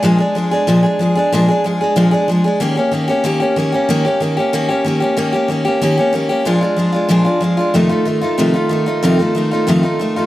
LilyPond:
\new Staff \with { instrumentName = "Steel-string acoustic guitar" } { \time 4/4 \key bes \mixolydian \tempo 4 = 187 <bes, f aes d' aes'>8 <aes d' aes'>8 <f aes d' aes'>8 <aes d' aes'>8 <bes, f aes d' aes'>8 <aes d' aes'>8 <f aes d' aes'>8 <aes d' aes'>8 | <bes, f aes d' aes'>8 <aes d' aes'>8 <f aes d' aes'>8 <aes d' aes'>8 <bes, f aes d' aes'>8 <aes d' aes'>8 <f aes d' aes'>8 <aes d' aes'>8 | <ees bes des' g'>8 <bes des' g'>8 <ees bes des' g'>8 <bes des' g'>8 <ees bes des' g'>8 <bes des' g'>8 <ees bes des' g'>8 <bes des' g'>8 | <ees bes des' g'>8 <bes des' g'>8 <ees bes des' g'>8 <bes des' g'>8 <ees bes des' g'>8 <bes des' g'>8 <ees bes des' g'>8 <bes des' g'>8 |
<ees bes des' g'>8 <bes des' g'>8 <ees bes des' g'>8 <bes des' g'>8 <ees bes des' g'>8 <bes des' g'>8 <ees bes des' g'>8 <bes des' g'>8 | <bes, f aes d' f'>8 <aes d' f'>8 <f aes d' f'>8 <aes d' f'>8 <bes, f aes d' f'>8 <aes d' f'>8 <f aes d' f'>8 <aes d' f'>8 | <f, c ees a ees' f'>8 <ees a ees' f'>8 <ees a ees' f'>8 <ees a ees' f'>8 <f, c ees a ees' f'>8 <ees a ees' f'>8 <ees a ees' f'>8 <ees a ees' f'>8 | <f, c ees a ees' f'>8 <ees a ees' f'>8 <ees a ees' f'>8 <ees a ees' f'>8 <f, c ees a ees' f'>8 <ees a ees' f'>8 <ees a ees' f'>8 <ees a ees' f'>8 | }